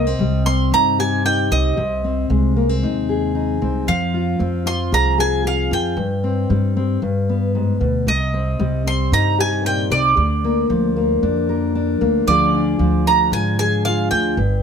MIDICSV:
0, 0, Header, 1, 4, 480
1, 0, Start_track
1, 0, Key_signature, -3, "minor"
1, 0, Tempo, 524934
1, 1618, Time_signature, 4, 2, 24, 8
1, 13375, End_track
2, 0, Start_track
2, 0, Title_t, "Mandolin"
2, 0, Program_c, 0, 25
2, 0, Note_on_c, 0, 75, 75
2, 421, Note_on_c, 0, 84, 79
2, 443, Note_off_c, 0, 75, 0
2, 666, Note_off_c, 0, 84, 0
2, 674, Note_on_c, 0, 82, 84
2, 890, Note_off_c, 0, 82, 0
2, 913, Note_on_c, 0, 80, 75
2, 1129, Note_off_c, 0, 80, 0
2, 1149, Note_on_c, 0, 79, 72
2, 1388, Note_on_c, 0, 75, 66
2, 1391, Note_off_c, 0, 79, 0
2, 2067, Note_off_c, 0, 75, 0
2, 3549, Note_on_c, 0, 77, 72
2, 4269, Note_on_c, 0, 84, 84
2, 4286, Note_off_c, 0, 77, 0
2, 4488, Note_off_c, 0, 84, 0
2, 4517, Note_on_c, 0, 82, 91
2, 4753, Note_off_c, 0, 82, 0
2, 4757, Note_on_c, 0, 80, 79
2, 4972, Note_off_c, 0, 80, 0
2, 5002, Note_on_c, 0, 77, 70
2, 5238, Note_off_c, 0, 77, 0
2, 5242, Note_on_c, 0, 79, 68
2, 5915, Note_off_c, 0, 79, 0
2, 7390, Note_on_c, 0, 75, 76
2, 8115, Note_on_c, 0, 84, 76
2, 8127, Note_off_c, 0, 75, 0
2, 8332, Note_off_c, 0, 84, 0
2, 8353, Note_on_c, 0, 82, 86
2, 8571, Note_off_c, 0, 82, 0
2, 8599, Note_on_c, 0, 80, 81
2, 8831, Note_off_c, 0, 80, 0
2, 8835, Note_on_c, 0, 79, 78
2, 9068, Note_on_c, 0, 74, 64
2, 9075, Note_off_c, 0, 79, 0
2, 9748, Note_off_c, 0, 74, 0
2, 11225, Note_on_c, 0, 74, 82
2, 11954, Note_on_c, 0, 82, 82
2, 11964, Note_off_c, 0, 74, 0
2, 12187, Note_off_c, 0, 82, 0
2, 12190, Note_on_c, 0, 80, 88
2, 12417, Note_off_c, 0, 80, 0
2, 12428, Note_on_c, 0, 80, 84
2, 12648, Note_off_c, 0, 80, 0
2, 12665, Note_on_c, 0, 77, 79
2, 12896, Note_off_c, 0, 77, 0
2, 12900, Note_on_c, 0, 79, 72
2, 13375, Note_off_c, 0, 79, 0
2, 13375, End_track
3, 0, Start_track
3, 0, Title_t, "Steel-string acoustic guitar"
3, 0, Program_c, 1, 25
3, 0, Note_on_c, 1, 48, 63
3, 61, Note_on_c, 1, 60, 42
3, 184, Note_on_c, 1, 55, 53
3, 414, Note_off_c, 1, 60, 0
3, 425, Note_on_c, 1, 60, 50
3, 672, Note_on_c, 1, 63, 51
3, 906, Note_on_c, 1, 67, 54
3, 1133, Note_off_c, 1, 63, 0
3, 1144, Note_on_c, 1, 63, 50
3, 1383, Note_off_c, 1, 60, 0
3, 1386, Note_on_c, 1, 60, 48
3, 1593, Note_off_c, 1, 55, 0
3, 1593, Note_off_c, 1, 63, 0
3, 1607, Note_off_c, 1, 48, 0
3, 1618, Note_on_c, 1, 48, 61
3, 1622, Note_off_c, 1, 67, 0
3, 1865, Note_off_c, 1, 60, 0
3, 1868, Note_on_c, 1, 60, 52
3, 2103, Note_on_c, 1, 56, 56
3, 2342, Note_off_c, 1, 60, 0
3, 2346, Note_on_c, 1, 58, 51
3, 2463, Note_off_c, 1, 58, 0
3, 2463, Note_on_c, 1, 60, 45
3, 2589, Note_on_c, 1, 63, 57
3, 2827, Note_on_c, 1, 68, 56
3, 3052, Note_off_c, 1, 63, 0
3, 3063, Note_on_c, 1, 63, 51
3, 3295, Note_off_c, 1, 60, 0
3, 3306, Note_on_c, 1, 60, 54
3, 3513, Note_off_c, 1, 56, 0
3, 3513, Note_off_c, 1, 63, 0
3, 3514, Note_off_c, 1, 68, 0
3, 3538, Note_on_c, 1, 53, 62
3, 3539, Note_off_c, 1, 48, 0
3, 3785, Note_on_c, 1, 65, 49
3, 4012, Note_off_c, 1, 60, 0
3, 4015, Note_on_c, 1, 60, 57
3, 4248, Note_off_c, 1, 65, 0
3, 4259, Note_on_c, 1, 65, 54
3, 4501, Note_on_c, 1, 68, 65
3, 4727, Note_off_c, 1, 68, 0
3, 4738, Note_on_c, 1, 68, 60
3, 4969, Note_off_c, 1, 68, 0
3, 4980, Note_on_c, 1, 68, 61
3, 5214, Note_off_c, 1, 65, 0
3, 5225, Note_on_c, 1, 65, 50
3, 5429, Note_off_c, 1, 60, 0
3, 5431, Note_off_c, 1, 68, 0
3, 5434, Note_off_c, 1, 65, 0
3, 5456, Note_on_c, 1, 43, 61
3, 5459, Note_off_c, 1, 53, 0
3, 5704, Note_on_c, 1, 60, 50
3, 5939, Note_on_c, 1, 55, 53
3, 6175, Note_off_c, 1, 60, 0
3, 6186, Note_on_c, 1, 60, 54
3, 6395, Note_off_c, 1, 60, 0
3, 6413, Note_off_c, 1, 43, 0
3, 6424, Note_on_c, 1, 43, 66
3, 6670, Note_on_c, 1, 59, 47
3, 6899, Note_off_c, 1, 43, 0
3, 6903, Note_on_c, 1, 44, 55
3, 6930, Note_off_c, 1, 55, 0
3, 7132, Note_off_c, 1, 44, 0
3, 7136, Note_on_c, 1, 47, 56
3, 7357, Note_off_c, 1, 59, 0
3, 7376, Note_on_c, 1, 48, 63
3, 7379, Note_off_c, 1, 47, 0
3, 7623, Note_on_c, 1, 60, 48
3, 7860, Note_on_c, 1, 55, 54
3, 8095, Note_off_c, 1, 60, 0
3, 8106, Note_on_c, 1, 60, 51
3, 8346, Note_on_c, 1, 63, 57
3, 8582, Note_on_c, 1, 67, 56
3, 8821, Note_on_c, 1, 46, 54
3, 9054, Note_off_c, 1, 48, 0
3, 9061, Note_off_c, 1, 46, 0
3, 9065, Note_on_c, 1, 48, 57
3, 9272, Note_off_c, 1, 55, 0
3, 9275, Note_off_c, 1, 60, 0
3, 9275, Note_off_c, 1, 63, 0
3, 9298, Note_off_c, 1, 48, 0
3, 9302, Note_off_c, 1, 67, 0
3, 9302, Note_on_c, 1, 50, 65
3, 9550, Note_on_c, 1, 58, 54
3, 9780, Note_on_c, 1, 53, 57
3, 10015, Note_off_c, 1, 58, 0
3, 10026, Note_on_c, 1, 58, 54
3, 10266, Note_on_c, 1, 62, 56
3, 10507, Note_on_c, 1, 70, 57
3, 10744, Note_off_c, 1, 62, 0
3, 10747, Note_on_c, 1, 62, 56
3, 10970, Note_off_c, 1, 58, 0
3, 10981, Note_on_c, 1, 58, 55
3, 11192, Note_off_c, 1, 50, 0
3, 11195, Note_off_c, 1, 70, 0
3, 11216, Note_off_c, 1, 53, 0
3, 11221, Note_off_c, 1, 58, 0
3, 11222, Note_on_c, 1, 50, 65
3, 11227, Note_on_c, 1, 53, 58
3, 11234, Note_off_c, 1, 62, 0
3, 11234, Note_on_c, 1, 62, 57
3, 11240, Note_on_c, 1, 65, 55
3, 11246, Note_on_c, 1, 68, 62
3, 11469, Note_off_c, 1, 62, 0
3, 11473, Note_on_c, 1, 62, 53
3, 11695, Note_off_c, 1, 53, 0
3, 11706, Note_on_c, 1, 53, 61
3, 11950, Note_off_c, 1, 62, 0
3, 11953, Note_on_c, 1, 62, 54
3, 12180, Note_off_c, 1, 65, 0
3, 12191, Note_on_c, 1, 65, 56
3, 12420, Note_off_c, 1, 68, 0
3, 12431, Note_on_c, 1, 68, 59
3, 12662, Note_off_c, 1, 65, 0
3, 12673, Note_on_c, 1, 65, 54
3, 12903, Note_off_c, 1, 62, 0
3, 12914, Note_on_c, 1, 62, 53
3, 13111, Note_off_c, 1, 50, 0
3, 13117, Note_off_c, 1, 65, 0
3, 13117, Note_off_c, 1, 68, 0
3, 13118, Note_off_c, 1, 62, 0
3, 13142, Note_off_c, 1, 53, 0
3, 13142, Note_on_c, 1, 43, 65
3, 13375, Note_off_c, 1, 43, 0
3, 13375, End_track
4, 0, Start_track
4, 0, Title_t, "Upright bass"
4, 0, Program_c, 2, 32
4, 0, Note_on_c, 2, 36, 76
4, 151, Note_off_c, 2, 36, 0
4, 174, Note_on_c, 2, 36, 80
4, 632, Note_off_c, 2, 36, 0
4, 657, Note_on_c, 2, 43, 77
4, 1342, Note_off_c, 2, 43, 0
4, 1381, Note_on_c, 2, 36, 70
4, 1608, Note_off_c, 2, 36, 0
4, 1622, Note_on_c, 2, 36, 82
4, 2076, Note_off_c, 2, 36, 0
4, 2101, Note_on_c, 2, 36, 84
4, 2556, Note_off_c, 2, 36, 0
4, 2589, Note_on_c, 2, 39, 80
4, 3269, Note_off_c, 2, 39, 0
4, 3309, Note_on_c, 2, 36, 77
4, 3533, Note_off_c, 2, 36, 0
4, 3548, Note_on_c, 2, 41, 79
4, 4000, Note_off_c, 2, 41, 0
4, 4024, Note_on_c, 2, 41, 84
4, 4478, Note_off_c, 2, 41, 0
4, 4502, Note_on_c, 2, 36, 80
4, 5185, Note_off_c, 2, 36, 0
4, 5223, Note_on_c, 2, 41, 77
4, 5450, Note_off_c, 2, 41, 0
4, 5456, Note_on_c, 2, 43, 83
4, 5914, Note_off_c, 2, 43, 0
4, 5945, Note_on_c, 2, 43, 85
4, 6399, Note_off_c, 2, 43, 0
4, 6419, Note_on_c, 2, 43, 79
4, 7104, Note_off_c, 2, 43, 0
4, 7140, Note_on_c, 2, 38, 72
4, 7369, Note_off_c, 2, 38, 0
4, 7379, Note_on_c, 2, 36, 80
4, 7836, Note_off_c, 2, 36, 0
4, 7859, Note_on_c, 2, 36, 85
4, 8316, Note_off_c, 2, 36, 0
4, 8340, Note_on_c, 2, 43, 79
4, 9025, Note_off_c, 2, 43, 0
4, 9053, Note_on_c, 2, 36, 72
4, 9285, Note_off_c, 2, 36, 0
4, 9299, Note_on_c, 2, 38, 88
4, 9756, Note_off_c, 2, 38, 0
4, 9783, Note_on_c, 2, 38, 89
4, 10238, Note_off_c, 2, 38, 0
4, 10267, Note_on_c, 2, 41, 82
4, 10948, Note_off_c, 2, 41, 0
4, 10985, Note_on_c, 2, 38, 79
4, 11211, Note_off_c, 2, 38, 0
4, 11221, Note_on_c, 2, 38, 87
4, 11677, Note_off_c, 2, 38, 0
4, 11698, Note_on_c, 2, 38, 86
4, 12155, Note_off_c, 2, 38, 0
4, 12178, Note_on_c, 2, 44, 81
4, 12863, Note_off_c, 2, 44, 0
4, 12904, Note_on_c, 2, 38, 73
4, 13130, Note_off_c, 2, 38, 0
4, 13143, Note_on_c, 2, 31, 82
4, 13375, Note_off_c, 2, 31, 0
4, 13375, End_track
0, 0, End_of_file